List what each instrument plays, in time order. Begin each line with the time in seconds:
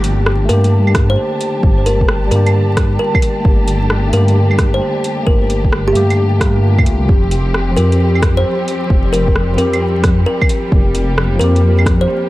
Already playing: detuned saw bass G1, string section D3 G4 A5, tine electric piano A3 A#3 G4
0.04 closed hi-hat
0.26 cross-stick
0.45 tine electric piano A3 A#3, kalimba A#4
0.49 detuned saw bass G2, tine electric piano G4, closed hi-hat
0.64 closed hi-hat
0.87 claves
0.95 kick, cross-stick, closed hi-hat
1.10 kalimba C5
1.41 closed hi-hat
1.59 tine electric piano G3
1.63 detuned saw bass G1, tine electric piano A#3, kick
1.67 tine electric piano G4
1.86 kalimba A#4, closed hi-hat
2.01 kick
2.08 cross-stick
2.27 tine electric piano G3, kalimba A#4
2.31 detuned saw bass G2, tine electric piano A#3, closed hi-hat
2.36 tine electric piano G4
2.46 closed hi-hat, claves
2.77 kick, cross-stick, closed hi-hat
2.99 kalimba A#4
3.15 kick, claves
3.22 closed hi-hat
3.40 tine electric piano A3 A#3
3.45 detuned saw bass G1, tine electric piano G4, kick
3.68 closed hi-hat
3.90 cross-stick
4.09 tine electric piano A3 A#3, closed hi-hat
4.13 detuned saw bass G2, kalimba A#4
4.17 tine electric piano G4
4.28 closed hi-hat
4.51 claves
4.58 kick, cross-stick, closed hi-hat
4.74 kalimba C5
5.04 closed hi-hat
5.23 tine electric piano A3 A#3, kalimba A#4, kick
5.27 detuned saw bass G1, tine electric piano G4
5.50 closed hi-hat
5.65 kick
5.73 cross-stick
5.88 kalimba G4
5.93 detuned saw bass G2, tine electric piano A3 A#3 G4, closed hi-hat
6.10 closed hi-hat, claves
6.38 tine electric piano A3 A#3 A#4, kick, cross-stick, closed hi-hat
6.61 tine electric piano A3 A#3 F4
6.78 kick, claves
6.83 detuned saw bass C2, tine electric piano A3 A#3, closed hi-hat
6.88 tine electric piano F4
7.04 tine electric piano F3 C4
7.08 detuned saw bass F1, string section F3 G3 C4, tine electric piano G4, kick
7.31 closed hi-hat
7.54 cross-stick
7.72 tine electric piano F3
7.76 detuned saw bass F2, tine electric piano C4 G4, kalimba A#4, closed hi-hat
7.92 closed hi-hat
8.15 claves
8.22 kick, cross-stick, closed hi-hat
8.37 kalimba C5
8.68 closed hi-hat
8.86 tine electric piano F3
8.90 detuned saw bass F1, tine electric piano C4, kick
8.94 tine electric piano G4
9.13 kalimba A#4, closed hi-hat
9.28 kick
9.36 cross-stick
9.54 tine electric piano F3 C4
9.58 detuned saw bass F2, tine electric piano G4, kalimba A#4, closed hi-hat
9.73 closed hi-hat, claves
10.04 kick, cross-stick, closed hi-hat
10.26 kalimba A#4
10.42 kick, claves
10.49 closed hi-hat
10.68 tine electric piano F3 C4
10.72 detuned saw bass F1, string section A#3, kick
10.76 tine electric piano G4
10.95 closed hi-hat
11.18 cross-stick
11.36 tine electric piano F3, kalimba A#4
11.40 detuned saw bass F2, tine electric piano C4 G4, closed hi-hat
11.56 closed hi-hat
11.79 claves
11.86 kick, cross-stick, closed hi-hat
12.01 kalimba C5